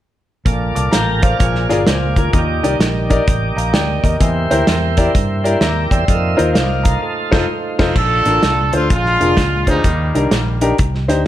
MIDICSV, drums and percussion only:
0, 0, Header, 1, 2, 480
1, 0, Start_track
1, 0, Key_signature, -2, "major"
1, 0, Tempo, 469851
1, 464, Time_signature, 4, 2, 24, 8
1, 11515, End_track
2, 0, Start_track
2, 0, Title_t, "Drums"
2, 468, Note_on_c, 9, 36, 90
2, 469, Note_on_c, 9, 42, 74
2, 570, Note_off_c, 9, 36, 0
2, 571, Note_off_c, 9, 42, 0
2, 779, Note_on_c, 9, 42, 62
2, 881, Note_off_c, 9, 42, 0
2, 945, Note_on_c, 9, 38, 86
2, 949, Note_on_c, 9, 42, 93
2, 1047, Note_off_c, 9, 38, 0
2, 1051, Note_off_c, 9, 42, 0
2, 1252, Note_on_c, 9, 42, 75
2, 1257, Note_on_c, 9, 36, 93
2, 1354, Note_off_c, 9, 42, 0
2, 1359, Note_off_c, 9, 36, 0
2, 1430, Note_on_c, 9, 42, 85
2, 1433, Note_on_c, 9, 36, 106
2, 1532, Note_off_c, 9, 42, 0
2, 1535, Note_off_c, 9, 36, 0
2, 1582, Note_on_c, 9, 38, 28
2, 1685, Note_off_c, 9, 38, 0
2, 1735, Note_on_c, 9, 38, 34
2, 1741, Note_on_c, 9, 42, 72
2, 1837, Note_off_c, 9, 38, 0
2, 1843, Note_off_c, 9, 42, 0
2, 1906, Note_on_c, 9, 38, 102
2, 1914, Note_on_c, 9, 42, 91
2, 2008, Note_off_c, 9, 38, 0
2, 2016, Note_off_c, 9, 42, 0
2, 2211, Note_on_c, 9, 36, 80
2, 2215, Note_on_c, 9, 42, 62
2, 2313, Note_off_c, 9, 36, 0
2, 2317, Note_off_c, 9, 42, 0
2, 2384, Note_on_c, 9, 36, 102
2, 2384, Note_on_c, 9, 42, 73
2, 2486, Note_off_c, 9, 36, 0
2, 2486, Note_off_c, 9, 42, 0
2, 2700, Note_on_c, 9, 42, 64
2, 2802, Note_off_c, 9, 42, 0
2, 2865, Note_on_c, 9, 38, 98
2, 2868, Note_on_c, 9, 42, 78
2, 2967, Note_off_c, 9, 38, 0
2, 2971, Note_off_c, 9, 42, 0
2, 3172, Note_on_c, 9, 42, 73
2, 3174, Note_on_c, 9, 36, 80
2, 3274, Note_off_c, 9, 42, 0
2, 3276, Note_off_c, 9, 36, 0
2, 3346, Note_on_c, 9, 42, 87
2, 3348, Note_on_c, 9, 36, 105
2, 3448, Note_off_c, 9, 42, 0
2, 3450, Note_off_c, 9, 36, 0
2, 3661, Note_on_c, 9, 42, 67
2, 3763, Note_off_c, 9, 42, 0
2, 3817, Note_on_c, 9, 38, 111
2, 3826, Note_on_c, 9, 42, 87
2, 3920, Note_off_c, 9, 38, 0
2, 3928, Note_off_c, 9, 42, 0
2, 4123, Note_on_c, 9, 36, 75
2, 4132, Note_on_c, 9, 42, 61
2, 4226, Note_off_c, 9, 36, 0
2, 4235, Note_off_c, 9, 42, 0
2, 4296, Note_on_c, 9, 36, 95
2, 4296, Note_on_c, 9, 42, 80
2, 4398, Note_off_c, 9, 42, 0
2, 4399, Note_off_c, 9, 36, 0
2, 4609, Note_on_c, 9, 42, 71
2, 4711, Note_off_c, 9, 42, 0
2, 4772, Note_on_c, 9, 38, 102
2, 4776, Note_on_c, 9, 42, 87
2, 4874, Note_off_c, 9, 38, 0
2, 4878, Note_off_c, 9, 42, 0
2, 5078, Note_on_c, 9, 42, 79
2, 5084, Note_on_c, 9, 36, 83
2, 5180, Note_off_c, 9, 42, 0
2, 5186, Note_off_c, 9, 36, 0
2, 5260, Note_on_c, 9, 36, 102
2, 5262, Note_on_c, 9, 42, 76
2, 5362, Note_off_c, 9, 36, 0
2, 5364, Note_off_c, 9, 42, 0
2, 5572, Note_on_c, 9, 42, 65
2, 5674, Note_off_c, 9, 42, 0
2, 5731, Note_on_c, 9, 38, 102
2, 5739, Note_on_c, 9, 42, 94
2, 5833, Note_off_c, 9, 38, 0
2, 5841, Note_off_c, 9, 42, 0
2, 6039, Note_on_c, 9, 36, 83
2, 6047, Note_on_c, 9, 42, 58
2, 6141, Note_off_c, 9, 36, 0
2, 6149, Note_off_c, 9, 42, 0
2, 6214, Note_on_c, 9, 36, 89
2, 6215, Note_on_c, 9, 42, 72
2, 6316, Note_off_c, 9, 36, 0
2, 6317, Note_off_c, 9, 42, 0
2, 6527, Note_on_c, 9, 42, 65
2, 6629, Note_off_c, 9, 42, 0
2, 6695, Note_on_c, 9, 38, 107
2, 6699, Note_on_c, 9, 42, 82
2, 6797, Note_off_c, 9, 38, 0
2, 6801, Note_off_c, 9, 42, 0
2, 6999, Note_on_c, 9, 42, 70
2, 7003, Note_on_c, 9, 36, 83
2, 7101, Note_off_c, 9, 42, 0
2, 7105, Note_off_c, 9, 36, 0
2, 7483, Note_on_c, 9, 36, 102
2, 7484, Note_on_c, 9, 38, 96
2, 7484, Note_on_c, 9, 49, 81
2, 7585, Note_off_c, 9, 36, 0
2, 7586, Note_off_c, 9, 38, 0
2, 7586, Note_off_c, 9, 49, 0
2, 7960, Note_on_c, 9, 38, 98
2, 7960, Note_on_c, 9, 49, 72
2, 7961, Note_on_c, 9, 36, 101
2, 8062, Note_off_c, 9, 38, 0
2, 8062, Note_off_c, 9, 49, 0
2, 8063, Note_off_c, 9, 36, 0
2, 8129, Note_on_c, 9, 36, 103
2, 8130, Note_on_c, 9, 49, 82
2, 8231, Note_off_c, 9, 36, 0
2, 8232, Note_off_c, 9, 49, 0
2, 8433, Note_on_c, 9, 42, 63
2, 8535, Note_off_c, 9, 42, 0
2, 8609, Note_on_c, 9, 38, 108
2, 8612, Note_on_c, 9, 42, 85
2, 8711, Note_off_c, 9, 38, 0
2, 8714, Note_off_c, 9, 42, 0
2, 8917, Note_on_c, 9, 42, 68
2, 9019, Note_off_c, 9, 42, 0
2, 9094, Note_on_c, 9, 42, 79
2, 9097, Note_on_c, 9, 36, 98
2, 9196, Note_off_c, 9, 42, 0
2, 9199, Note_off_c, 9, 36, 0
2, 9249, Note_on_c, 9, 38, 31
2, 9351, Note_off_c, 9, 38, 0
2, 9407, Note_on_c, 9, 42, 70
2, 9509, Note_off_c, 9, 42, 0
2, 9571, Note_on_c, 9, 38, 100
2, 9577, Note_on_c, 9, 36, 90
2, 9579, Note_on_c, 9, 42, 90
2, 9673, Note_off_c, 9, 38, 0
2, 9679, Note_off_c, 9, 36, 0
2, 9681, Note_off_c, 9, 42, 0
2, 9879, Note_on_c, 9, 36, 77
2, 9881, Note_on_c, 9, 42, 69
2, 9981, Note_off_c, 9, 36, 0
2, 9983, Note_off_c, 9, 42, 0
2, 10054, Note_on_c, 9, 42, 74
2, 10056, Note_on_c, 9, 36, 104
2, 10156, Note_off_c, 9, 42, 0
2, 10158, Note_off_c, 9, 36, 0
2, 10373, Note_on_c, 9, 42, 68
2, 10476, Note_off_c, 9, 42, 0
2, 10536, Note_on_c, 9, 38, 100
2, 10540, Note_on_c, 9, 42, 87
2, 10638, Note_off_c, 9, 38, 0
2, 10642, Note_off_c, 9, 42, 0
2, 10842, Note_on_c, 9, 42, 67
2, 10945, Note_off_c, 9, 42, 0
2, 11018, Note_on_c, 9, 42, 89
2, 11025, Note_on_c, 9, 36, 115
2, 11120, Note_off_c, 9, 42, 0
2, 11127, Note_off_c, 9, 36, 0
2, 11181, Note_on_c, 9, 38, 27
2, 11283, Note_off_c, 9, 38, 0
2, 11329, Note_on_c, 9, 38, 29
2, 11334, Note_on_c, 9, 42, 73
2, 11431, Note_off_c, 9, 38, 0
2, 11437, Note_off_c, 9, 42, 0
2, 11515, End_track
0, 0, End_of_file